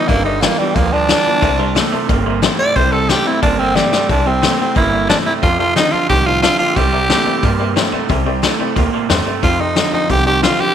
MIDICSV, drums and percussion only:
0, 0, Header, 1, 2, 480
1, 0, Start_track
1, 0, Tempo, 333704
1, 122, Time_signature, 4, 2, 24, 8
1, 15456, End_track
2, 0, Start_track
2, 0, Title_t, "Drums"
2, 129, Note_on_c, 9, 36, 116
2, 131, Note_on_c, 9, 46, 59
2, 273, Note_off_c, 9, 36, 0
2, 275, Note_off_c, 9, 46, 0
2, 611, Note_on_c, 9, 38, 108
2, 611, Note_on_c, 9, 46, 53
2, 755, Note_off_c, 9, 38, 0
2, 755, Note_off_c, 9, 46, 0
2, 1089, Note_on_c, 9, 36, 122
2, 1090, Note_on_c, 9, 46, 57
2, 1233, Note_off_c, 9, 36, 0
2, 1234, Note_off_c, 9, 46, 0
2, 1567, Note_on_c, 9, 38, 110
2, 1567, Note_on_c, 9, 46, 55
2, 1710, Note_off_c, 9, 38, 0
2, 1710, Note_off_c, 9, 46, 0
2, 2048, Note_on_c, 9, 36, 126
2, 2048, Note_on_c, 9, 46, 52
2, 2192, Note_off_c, 9, 36, 0
2, 2192, Note_off_c, 9, 46, 0
2, 2532, Note_on_c, 9, 38, 114
2, 2532, Note_on_c, 9, 46, 49
2, 2676, Note_off_c, 9, 38, 0
2, 2676, Note_off_c, 9, 46, 0
2, 3010, Note_on_c, 9, 36, 118
2, 3012, Note_on_c, 9, 46, 48
2, 3154, Note_off_c, 9, 36, 0
2, 3156, Note_off_c, 9, 46, 0
2, 3489, Note_on_c, 9, 38, 107
2, 3489, Note_on_c, 9, 46, 49
2, 3633, Note_off_c, 9, 38, 0
2, 3633, Note_off_c, 9, 46, 0
2, 3970, Note_on_c, 9, 36, 116
2, 3971, Note_on_c, 9, 46, 51
2, 4114, Note_off_c, 9, 36, 0
2, 4115, Note_off_c, 9, 46, 0
2, 4450, Note_on_c, 9, 38, 119
2, 4450, Note_on_c, 9, 46, 49
2, 4594, Note_off_c, 9, 38, 0
2, 4594, Note_off_c, 9, 46, 0
2, 4926, Note_on_c, 9, 46, 57
2, 4930, Note_on_c, 9, 36, 115
2, 5069, Note_off_c, 9, 46, 0
2, 5074, Note_off_c, 9, 36, 0
2, 5408, Note_on_c, 9, 38, 67
2, 5552, Note_off_c, 9, 38, 0
2, 5648, Note_on_c, 9, 38, 84
2, 5792, Note_off_c, 9, 38, 0
2, 5889, Note_on_c, 9, 36, 114
2, 5891, Note_on_c, 9, 46, 52
2, 6033, Note_off_c, 9, 36, 0
2, 6035, Note_off_c, 9, 46, 0
2, 6371, Note_on_c, 9, 38, 109
2, 6371, Note_on_c, 9, 46, 53
2, 6515, Note_off_c, 9, 38, 0
2, 6515, Note_off_c, 9, 46, 0
2, 6848, Note_on_c, 9, 36, 111
2, 6850, Note_on_c, 9, 46, 47
2, 6991, Note_off_c, 9, 36, 0
2, 6994, Note_off_c, 9, 46, 0
2, 7329, Note_on_c, 9, 38, 110
2, 7329, Note_on_c, 9, 46, 49
2, 7473, Note_off_c, 9, 38, 0
2, 7473, Note_off_c, 9, 46, 0
2, 7807, Note_on_c, 9, 46, 49
2, 7808, Note_on_c, 9, 36, 119
2, 7951, Note_off_c, 9, 36, 0
2, 7951, Note_off_c, 9, 46, 0
2, 8291, Note_on_c, 9, 38, 125
2, 8291, Note_on_c, 9, 46, 53
2, 8434, Note_off_c, 9, 38, 0
2, 8434, Note_off_c, 9, 46, 0
2, 8769, Note_on_c, 9, 36, 115
2, 8770, Note_on_c, 9, 46, 54
2, 8913, Note_off_c, 9, 36, 0
2, 8914, Note_off_c, 9, 46, 0
2, 9254, Note_on_c, 9, 38, 110
2, 9254, Note_on_c, 9, 46, 53
2, 9398, Note_off_c, 9, 38, 0
2, 9398, Note_off_c, 9, 46, 0
2, 9730, Note_on_c, 9, 36, 120
2, 9732, Note_on_c, 9, 46, 56
2, 9874, Note_off_c, 9, 36, 0
2, 9876, Note_off_c, 9, 46, 0
2, 10210, Note_on_c, 9, 38, 110
2, 10210, Note_on_c, 9, 46, 51
2, 10354, Note_off_c, 9, 38, 0
2, 10354, Note_off_c, 9, 46, 0
2, 10688, Note_on_c, 9, 46, 54
2, 10689, Note_on_c, 9, 36, 110
2, 10832, Note_off_c, 9, 46, 0
2, 10833, Note_off_c, 9, 36, 0
2, 11173, Note_on_c, 9, 38, 109
2, 11173, Note_on_c, 9, 46, 45
2, 11316, Note_off_c, 9, 38, 0
2, 11316, Note_off_c, 9, 46, 0
2, 11646, Note_on_c, 9, 36, 121
2, 11648, Note_on_c, 9, 46, 48
2, 11790, Note_off_c, 9, 36, 0
2, 11792, Note_off_c, 9, 46, 0
2, 12127, Note_on_c, 9, 38, 99
2, 12127, Note_on_c, 9, 46, 47
2, 12271, Note_off_c, 9, 38, 0
2, 12271, Note_off_c, 9, 46, 0
2, 12606, Note_on_c, 9, 36, 109
2, 12607, Note_on_c, 9, 46, 53
2, 12750, Note_off_c, 9, 36, 0
2, 12751, Note_off_c, 9, 46, 0
2, 13086, Note_on_c, 9, 38, 113
2, 13086, Note_on_c, 9, 46, 59
2, 13230, Note_off_c, 9, 38, 0
2, 13230, Note_off_c, 9, 46, 0
2, 13564, Note_on_c, 9, 36, 103
2, 13567, Note_on_c, 9, 46, 56
2, 13708, Note_off_c, 9, 36, 0
2, 13711, Note_off_c, 9, 46, 0
2, 14043, Note_on_c, 9, 38, 110
2, 14043, Note_on_c, 9, 46, 58
2, 14187, Note_off_c, 9, 38, 0
2, 14187, Note_off_c, 9, 46, 0
2, 14524, Note_on_c, 9, 36, 102
2, 14525, Note_on_c, 9, 46, 53
2, 14668, Note_off_c, 9, 36, 0
2, 14669, Note_off_c, 9, 46, 0
2, 15010, Note_on_c, 9, 38, 114
2, 15010, Note_on_c, 9, 46, 48
2, 15154, Note_off_c, 9, 38, 0
2, 15154, Note_off_c, 9, 46, 0
2, 15456, End_track
0, 0, End_of_file